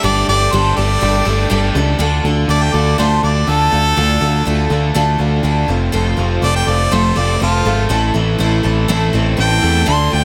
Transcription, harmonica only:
0.04 0.27 D5 medium
0.29 0.54 D5 loud
0.52 0.76 C5 medium
0.77 1.71 D5 medium
2.50 2.65 D5 medium
2.63 2.76 G5 medium
2.74 2.98 D5 medium
2.99 3.23 C5 medium
3.24 3.51 D5 medium
3.49 4.92 A4 loud
6.43 6.55 D5 medium
6.56 6.70 G5 medium
6.69 6.94 D5 medium
6.93 7.20 C5 loud
7.18 7.42 D5 medium
7.43 7.90 F4 medium
9.40 9.87 G5 loud
9.88 10.15 C6 medium
10.13 10.24 G5 loud

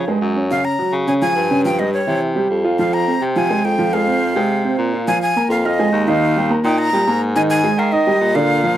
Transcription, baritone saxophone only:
0.07 0.20 G2 medium
0.21 0.61 F#2 medium
0.92 1.33 C#3 medium
1.35 2.02 G2 medium
2.07 2.47 C3 medium
2.50 3.16 F2 medium
3.21 3.61 C3 medium
3.64 4.30 F2 medium
4.35 4.75 C3 medium
4.78 5.18 A#2 medium
5.49 5.89 F2 medium
5.92 6.58 D#2 medium
6.63 6.90 A#2 medium
6.92 7.05 A#2 medium
7.06 7.72 G#2 medium
7.78 8.17 D#3 medium
8.20 8.77 A#2 medium

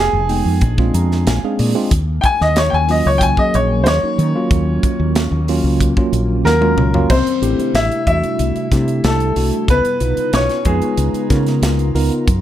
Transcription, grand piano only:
0.00 1.88 G#4 loud
2.21 2.25 G5 medium
2.25 2.40 G#5 loud
2.42 2.56 D#5 medium
2.58 2.72 C#5 medium
2.70 2.74 G5 medium
2.74 2.88 G#5 medium
2.91 3.05 D#5 medium
3.07 3.21 C#5 medium
3.18 3.22 G5 medium
3.23 3.37 G#5 loud
3.39 3.53 D#5 medium
3.55 3.86 C#5 medium
3.84 3.87 C5 medium
3.88 5.77 C#5 loud
6.45 7.12 A#4 medium
7.10 7.77 C5 medium
7.75 8.06 E5 loud
8.07 9.07 E5 loud
9.05 9.71 A4 medium
9.70 10.36 B4 medium
10.34 10.64 C#5 medium
10.66 11.91 G#4 medium

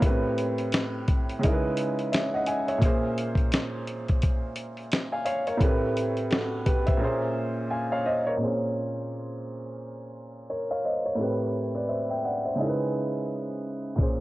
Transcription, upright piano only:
0.00 1.38 A2 medium
0.00 1.39 A3 medium
0.00 0.10 B3 soft
0.00 0.22 A#4 medium
0.00 0.22 C#5 medium
0.04 1.40 G4 medium
0.04 1.41 B4 medium
0.09 1.43 C4 medium
1.39 2.77 C#3 medium
1.39 2.78 G#3 medium
1.39 2.79 D#4 medium
1.45 2.80 E4 medium
1.45 1.52 A#4 medium
1.53 2.84 B4 medium
2.12 2.32 C#5 medium
2.12 2.32 E5 medium
2.34 2.47 D#5 medium
2.34 2.47 F#5 medium
2.47 2.66 E5 medium
2.47 2.67 G#5 medium
2.68 3.01 C#5 medium
2.68 3.01 E5 medium
2.78 5.55 A#2 medium
2.78 5.56 A#3 medium
2.78 5.57 C#4 medium
2.84 5.58 G#4 medium
2.84 4.55 C5 medium
5.12 5.24 F5 medium
5.12 5.25 G#5 medium
5.25 5.46 C#5 medium
5.25 5.46 F5 medium
5.47 5.80 A#4 medium
5.47 5.80 C#5 medium
5.57 6.96 A2 medium
5.57 6.97 A3 medium
5.57 6.98 C4 medium
5.63 6.30 G4 medium
5.63 6.31 B4 medium
6.31 6.64 F#4 soft
6.31 6.64 A4 medium
6.66 6.86 G4 medium
6.66 6.86 B4 medium
6.87 7.03 C5 medium
6.87 7.20 E5 medium
6.97 8.36 A#2 medium
6.97 8.36 A#3 medium
6.97 8.37 C#4 medium
7.02 8.38 G#4 medium
7.02 7.71 C5 medium
7.70 7.90 F5 medium
7.70 7.90 G#5 medium
7.92 8.05 C#5 medium
7.92 8.05 F5 medium
8.06 8.25 C5 medium
8.06 8.25 D#5 medium
8.27 8.60 A#4 medium
8.27 8.60 C#5 medium
8.37 11.14 A#2 medium
8.37 11.15 A#3 medium
8.37 8.48 C4 soft
8.43 11.16 G#4 medium
8.43 10.48 C5 medium
8.48 11.19 C#4 medium
10.50 10.70 A#4 soft
10.50 10.69 C#5 medium
10.71 10.84 C#5 medium
10.71 10.84 F5 medium
10.85 11.05 C5 medium
10.85 11.04 D#5 medium
11.06 11.39 A#4 soft
11.06 11.39 C#5 medium
11.15 12.54 A2 medium
11.15 12.55 A3 medium
11.15 12.56 C4 medium
11.21 12.57 G4 medium
11.21 11.55 B4 medium
11.75 11.88 B4 medium
11.75 11.88 D5 medium
11.89 12.09 C5 medium
11.89 12.09 E5 medium
12.10 12.23 E5 medium
12.10 12.23 G5 medium
12.24 12.44 D5 medium
12.24 12.44 F#5 medium
12.45 12.78 C5 medium
12.45 12.78 E5 medium
12.55 13.94 C#3 medium
12.55 13.95 G#3 medium
12.55 13.96 D#4 medium
12.60 13.96 E4 medium
12.60 12.68 A#4 medium
12.69 14.01 B4 medium
13.95 14.20 A#2 medium
13.95 14.20 A#3 medium
13.95 14.20 C#4 medium
14.01 14.20 G#4 medium
14.01 14.20 C5 medium

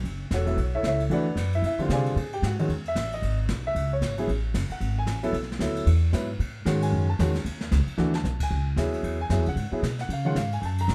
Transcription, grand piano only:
0.34 0.72 F#4 medium
0.34 0.45 A4 medium
0.34 0.72 C#5 medium
0.34 0.72 F#5 medium
0.46 0.56 F#3 medium
0.46 0.56 B3 medium
0.46 0.57 E4 medium
0.46 0.57 A4 medium
0.75 0.85 E4 medium
0.75 0.85 A4 medium
0.75 0.85 C#5 medium
0.75 0.85 E5 medium
0.87 1.01 E4 medium
0.87 1.01 A4 medium
0.87 1.01 C#5 medium
0.87 1.01 E5 medium
1.10 1.24 E3 medium
1.10 1.25 A3 medium
1.10 1.25 D4 medium
1.10 1.25 F#4 medium
1.10 1.51 B4 medium
1.10 1.52 D5 medium
1.10 1.51 F#5 medium
1.55 1.65 E4 medium
1.55 1.64 E5 medium
1.66 1.80 E4 medium
1.66 1.80 E5 medium
1.79 2.14 D3 medium
1.79 2.14 G3 medium
1.79 2.15 C4 medium
1.79 2.15 F4 medium
1.92 2.31 G#4 medium
1.92 2.16 D5 medium
1.92 2.16 F5 medium
1.92 2.31 G#5 medium
2.34 2.43 G4 medium
2.34 2.43 G5 medium
2.46 2.55 F#4 medium
2.46 2.55 F#5 medium
2.59 2.69 D#3 medium
2.59 2.69 G#3 medium
2.59 2.69 C#4 medium
2.59 2.69 F#4 medium
2.88 3.11 E5 medium
3.14 3.37 D#5 medium
3.67 3.90 E5 medium
3.93 4.17 C#5 medium
4.18 4.27 F#3 medium
4.18 4.28 B3 medium
4.18 4.28 E4 medium
4.18 4.28 G#4 medium
4.72 4.96 F#5 medium
4.98 5.32 G#5 medium
5.23 5.33 F#3 medium
5.23 5.33 B3 medium
5.23 5.33 E4 medium
5.23 5.34 A4 medium
5.60 5.87 F#3 medium
5.60 5.87 B3 medium
5.60 5.87 E4 medium
5.60 5.88 A4 medium
6.12 6.27 F#3 medium
6.12 6.27 B3 medium
6.12 6.28 E4 medium
6.12 6.28 B4 medium
6.66 7.05 D#3 medium
6.66 7.05 G#3 medium
6.66 7.05 C#4 medium
6.66 7.05 F#4 medium
6.82 7.07 G#5 medium
7.10 7.43 A5 medium
7.20 7.34 D#3 medium
7.20 7.34 G#3 medium
7.20 7.34 C#4 medium
7.20 7.34 F#4 medium
7.98 8.12 E3 medium
7.98 8.12 A3 medium
7.98 8.12 D4 medium
7.98 8.13 F#4 medium
8.15 8.39 A5 medium
8.43 8.66 G#5 medium
8.77 9.16 F#3 medium
8.77 9.16 B3 medium
8.77 9.17 E4 medium
8.77 9.17 G#4 medium
9.21 9.45 G#5 medium
9.30 9.45 F#3 medium
9.30 9.45 B3 medium
9.30 9.45 E4 medium
9.30 9.45 G#4 medium
9.48 9.72 F#5 medium
9.72 9.82 F#3 medium
9.72 9.82 B3 medium
9.72 9.82 E4 medium
9.72 9.82 G#4 medium
10.01 10.10 F#5 medium
10.13 10.27 F5 medium
10.25 10.35 D#3 medium
10.25 10.35 G#3 medium
10.25 10.35 C#4 medium
10.25 10.35 F4 medium
10.25 10.36 F#5 loud
10.37 10.52 F5 medium
10.53 10.59 G#5 medium
10.61 10.63 G#5 medium
10.65 10.79 A5 medium
10.81 10.90 A#5 loud

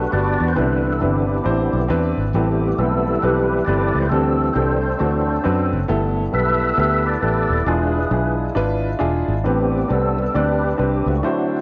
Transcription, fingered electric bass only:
0.13 0.36 G1 medium
0.40 0.54 E2 medium
0.58 1.03 C2 medium
1.02 1.39 G1 medium
1.46 1.68 A1 medium
1.73 1.87 B1 medium
1.90 2.13 E2 medium
2.17 2.32 G#1 medium
2.34 2.72 A1 loud
2.78 3.16 B1 medium
3.23 3.61 B1 medium
3.67 3.90 G1 medium
3.95 4.09 C#2 medium
4.11 4.49 D2 loud
4.56 4.93 C2 medium
5.01 5.38 D2 medium
5.46 5.74 F#2 medium
5.73 5.87 F#1 medium
5.89 6.27 G1 loud
6.33 6.71 B1 medium
6.78 7.16 D2 medium
7.22 7.46 A1 medium
7.50 7.64 D#1 medium
7.66 8.04 E1 medium
8.11 8.49 B1 medium
8.56 8.94 G#1 medium
9.01 9.24 E1 medium
9.28 9.43 G#1 medium
9.45 9.83 A1 loud
9.90 10.28 C2 medium
10.35 10.73 D2 medium
10.79 11.02 C2 medium
11.06 11.21 C#2 medium

